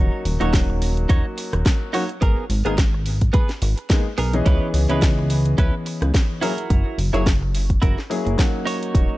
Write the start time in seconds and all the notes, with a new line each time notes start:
Already playing: D#1 F#3 A#3 C#4 D#4 F#4 C#5
0.25 D#1, open hi-hat
0.40 D#1 F#3 A#3 C#4 D#4 F#4 C#5, closed hi-hat
0.53 kick, snare, closed hi-hat
0.68 muted clean electric guitar stroke
0.82 open hi-hat
0.97 closed hi-hat
1.09 D#1 D#4 F#4 C#5, kick, closed hi-hat
1.37 muted clean electric guitar stroke, open hi-hat
1.53 D#1, muted clean electric guitar stroke, cross-stick, closed hi-hat
1.66 kick, snare, closed hi-hat
1.93 F#3 A#3 C#4 D#4 F#4 C#5, open hi-hat
2.09 closed hi-hat
2.21 G#1 B3 G#4 A#4, kick, closed hi-hat
2.50 G#1, open hi-hat
2.65 G#1 G#3 A#3 B3 D#4 G#4 A#4, closed hi-hat
2.78 kick, snare, closed hi-hat
2.93 muted clean electric guitar stroke
3.06 open hi-hat
3.21 kick, closed hi-hat
3.33 B3 G#4 B4, kick, closed hi-hat
3.49 snare, closed hi-hat
3.62 G#1, muted clean electric guitar stroke, open hi-hat
3.77 muted clean electric guitar stroke, closed hi-hat
3.90 G#3 A#3 B3 D#4 G#4, kick, snare, closed hi-hat
4.18 B1 B3 G#4 A#4, open hi-hat
4.33 E3 B3 C#4 G#4 D#5, closed hi-hat
4.46 C#2 C#4 E4 B4, kick, closed hi-hat
4.74 C#2, open hi-hat
4.89 C#2 E3 B3 C#4 E4 G#4 B4 D#5, closed hi-hat
5.02 kick, snare, closed hi-hat
5.18 muted clean electric guitar stroke
5.30 open hi-hat
5.45 closed hi-hat
5.58 C#2 C#4 E4 B4, kick, closed hi-hat
5.86 muted clean electric guitar stroke, open hi-hat
6.01 C#2, muted clean electric guitar stroke, cross-stick, closed hi-hat
6.14 kick, snare, closed hi-hat
6.41 F#3 A#3 C#4 E4 F#4 G#4 A#4, open hi-hat
6.58 closed hi-hat
6.70 F#1, kick, closed hi-hat
6.98 F#1, open hi-hat
7.13 F#1 F#3 A#3 C#4 E4 F#4 G#4 C#5, closed hi-hat
7.26 kick, snare, closed hi-hat
7.41 muted clean electric guitar stroke
7.55 open hi-hat
7.70 kick, closed hi-hat
7.82 F#1 E4 F#4 A#4, kick, closed hi-hat
7.98 snare
8.10 F#3 A#3 C#4 E4 G#4, muted clean electric guitar stroke, open hi-hat
8.25 F#1, muted clean electric guitar stroke, closed hi-hat
8.37 F#3 A#3 C#4 D#4 F#4, kick, snare, closed hi-hat
8.66 D#4 F#4 C#5, open hi-hat
8.83 closed hi-hat
8.95 D#1, kick, closed hi-hat